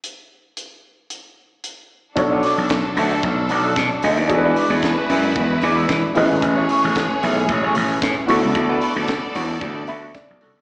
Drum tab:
HH |x-x-x-x-|xoxoxoxo|xoxoxoxo|xoxoxoxo|
SD |--------|-oo---o-|--o---o-|--o---o-|
BD |--------|o-o-o-o-|o-o-o-o-|o-o-o-o-|

HH |xoxoxoxo|
SD |--o---o-|
BD |o-o-o-o-|